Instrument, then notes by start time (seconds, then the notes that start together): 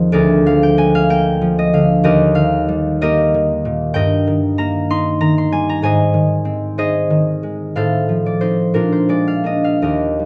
harp
Already playing: D#2 D#3 F3 G#3 C4 D#4 F4 G#4 C5 D#5
0.12 D2 G#4 A#4 D5
0.46 F3 F5
0.63 G5
0.77 G#3 G#5
0.95 F5
1.10 A#3 G5
1.41 F3
1.59 D#5
1.73 D3 F5
2.04 D#2 G4 A#4 D#5
2.35 D#3 F5
2.68 G3
3.01 A#3 G4 A#4 D#5
3.34 D#3
3.65 A#2
3.94 G2 A#4 D#5 G5
4.27 D#3
4.58 A#3 A#5
4.90 D#4 C6
5.21 D#3 A#5
5.38 C6
5.52 G3 G#5
5.69 A#5
5.82 G#2 C5 D#5 G#5
6.14 D#3
6.45 C4
6.78 D#4 G#4 C5 D#5
7.10 D#3
7.43 G#3
7.76 A2 A4 C5 F5
8.09 F3
8.26 D5
8.41 C4 D#4 C5
8.74 A#2 D4 F4 A#4
8.92 C5
9.09 G#3 D5
9.27 F5
9.44 A#3 D4 D#5
9.64 F5
9.82 D#2 G4 A#4 D#5
10.19 G3